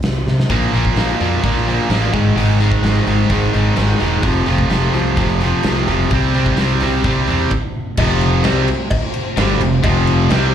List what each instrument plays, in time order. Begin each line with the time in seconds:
0.03 fingered electric bass C2, snare, open hi-hat
0.26 fingered electric bass C3, snare
0.40 snare
0.50 fingered electric bass A#1, overdriven electric guitar A#2 F3 A#3, string machine A#3 D4 F4 D5, kick, open hi-hat, crash
0.73 fingered electric bass A#1, overdriven electric guitar A#2 F3 A#3, open hi-hat
0.85 kick
0.96 fingered electric bass A#1, overdriven electric guitar A#2 F3 A#3, snare, open hi-hat
1.20 fingered electric bass F2, overdriven electric guitar A#2 F3 A#3, open hi-hat
1.43 fingered electric bass A#1, overdriven electric guitar A#2 F3 A#3, kick, open hi-hat
1.57 snare
1.67 overdriven electric guitar A#2 F3 A#3, open hi-hat
1.90 fingered electric bass A1, overdriven electric guitar A#2 F3 A#3, snare, open hi-hat
2.12 fingered electric bass G#1, overdriven electric guitar G#2 D#3 G#3, string machine A3 C#4 E4 C#5, kick, open hi-hat
2.30 string machine G#3 C4 D#4 C5
2.36 fingered electric bass G#1, overdriven electric guitar G#2 D#3 G#3, open hi-hat
2.60 overdriven electric guitar G#2 D#3 G#3, open hi-hat
2.72 kick
2.83 fingered electric bass G#1, overdriven electric guitar G#2 D#3 G#3, snare, open hi-hat
3.06 fingered electric bass G#1, overdriven electric guitar G#2 D#3 G#3, open hi-hat
3.29 fingered electric bass G#1, overdriven electric guitar G#2 D#3 G#3, kick, open hi-hat
3.53 fingered electric bass G#1, overdriven electric guitar G#2 D#3 G#3, open hi-hat
3.76 fingered electric bass G#1, overdriven electric guitar G#2 D#3 G#3, snare, open hi-hat
3.99 fingered electric bass E1, overdriven electric guitar G#2 D#3 G#3, open hi-hat
4.22 fingered electric bass F1, overdriven electric guitar F2 C3 F3, string machine A3 C4 F4 C5, kick, open hi-hat
4.46 fingered electric bass F1, overdriven electric guitar F2 C3 F3, open hi-hat
4.58 kick
4.69 fingered electric bass F1, overdriven electric guitar F2 C3 F3, snare, open hi-hat
4.93 fingered electric bass C2, overdriven electric guitar F2 C3 F3, open hi-hat
5.16 fingered electric bass F1, overdriven electric guitar F2 C3 F3, kick, open hi-hat
5.40 overdriven electric guitar F2 C3 F3, open hi-hat
5.63 fingered electric bass C2, overdriven electric guitar F2 C3 F3, snare, open hi-hat
5.87 fingered electric bass F1, overdriven electric guitar F2 C3 F3, open hi-hat
6.10 fingered electric bass C2, overdriven electric guitar C3 G3 C4, string machine G3 C4 E4 C5, kick, open hi-hat
6.34 overdriven electric guitar C3 G3 C4, open hi-hat
6.46 kick
6.57 fingered electric bass C2, overdriven electric guitar C3 G3 C4, snare, open hi-hat
6.81 fingered electric bass C2, overdriven electric guitar C3 G3 C4, open hi-hat
7.04 fingered electric bass C2, overdriven electric guitar C3 G3 C4, kick, open hi-hat
7.27 fingered electric bass E2, overdriven electric guitar C3 G3 C4, open hi-hat
7.51 kick, crash
7.97 fingered electric bass F1, overdriven electric guitar F2 C3 F3, string machine A3 C4 F4 C5, kick, crash, cowbell
8.21 crash
8.44 fingered electric bass C2, overdriven electric guitar C3 G3 C4, snare, cowbell, crash
8.68 crash
8.91 kick, cowbell, crash
9.14 crash
9.37 fingered electric bass G1, overdriven electric guitar G2 D3 G3, snare, cowbell, crash
9.60 fingered electric bass F1, overdriven electric guitar F2 C3, crash
9.82 fingered electric bass F1, overdriven electric guitar F2 C3 F3, kick, cowbell, crash
10.07 crash
10.30 fingered electric bass C2, overdriven electric guitar C3 G3 C4, snare, cowbell, crash